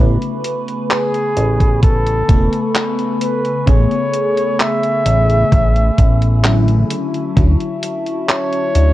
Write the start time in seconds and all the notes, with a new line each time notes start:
Already playing: C#3 A3 B5
0.00 A1 A3 B3 B4 G#5 C#6
0.22 closed hi-hat
0.44 closed hi-hat
0.68 closed hi-hat
0.90 G#4, clap, closed hi-hat
1.14 closed hi-hat
1.37 A1, closed hi-hat
1.60 kick, closed hi-hat
1.83 A4, kick, closed hi-hat
2.07 closed hi-hat
2.28 E1 C#3 A3 B3 A4, kick, closed hi-hat
2.53 closed hi-hat
2.75 clap, closed hi-hat
2.99 closed hi-hat
3.21 B4, closed hi-hat
3.45 closed hi-hat
3.66 A1 C#3 A3 B3 G#4 C#5, kick, closed hi-hat
3.91 closed hi-hat
4.13 closed hi-hat
4.37 closed hi-hat
4.60 E5, clap, closed hi-hat
4.83 closed hi-hat
5.06 A1, closed hi-hat
5.30 closed hi-hat
5.52 A1, kick, closed hi-hat
5.76 closed hi-hat
5.98 A1, kick, closed hi-hat
6.22 closed hi-hat
6.44 D3 F#3 C#4 E4, clap, closed hi-hat
6.68 closed hi-hat
6.90 F#4 E5 A5 C#6, closed hi-hat
7.14 closed hi-hat
7.35 D2 D3 F#3 C#4 E4, kick, closed hi-hat
7.60 closed hi-hat
7.83 closed hi-hat
8.06 closed hi-hat
8.29 C#5, clap, closed hi-hat
8.53 closed hi-hat
8.75 D2, closed hi-hat